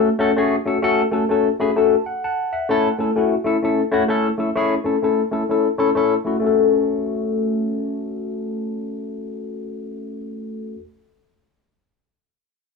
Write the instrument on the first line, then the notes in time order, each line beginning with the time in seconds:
tine electric piano
0.19 A3 C#4 F#4 A4
0.36 A3 C#4 F#4 G#4
0.66 A3 C#4 F#4 A4
0.82 A3 C#4 F#4 A4
1.11 A3 C#4 F#4 A4
1.29 A3 C#4 F#4 A4
1.59 A3 C#4 F#4 G#4 B5
1.76 A3 C#4 F#4 A4 A5
2.06 F#5
2.24 F#5 A5
2.53 E5 F#5
2.69 A3 C#4 E4 A4
2.98 A3 C#4 E4 A4
3.16 A3 C#4 E4 F#4
3.44 A3 C#4 E4 A4
3.62 A3 C#4 E4 A4
3.91 A3 C#4 E4 F#4
4.08 A3 C#4 E4 A4
4.38 A3 C#4 E4 A4
4.55 A3 C#4 E4 G#4
4.84 A3 C#4 E4 A4
5.02 A3 C#4 E4 A4
5.31 A3 C#4 E4 A4
5.49 A3 C#4 E4 A4
5.78 A3 C#4 E4 A4
5.95 A3 C#4 E4 A4
6.24 A3 C#4 E4 F#4
6.39 A3 C#4
6.44 F#4 A4